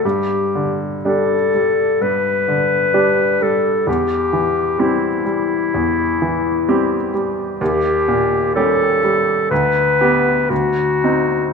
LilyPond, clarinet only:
\new Staff \with { instrumentName = "Clarinet" } { \time 4/4 \key g \major \tempo 4 = 64 g'8 r8 a'4 b'4. a'8 | g'4 e'2~ e'8 r8 | g'4 a'4 b'4 fis'4 | }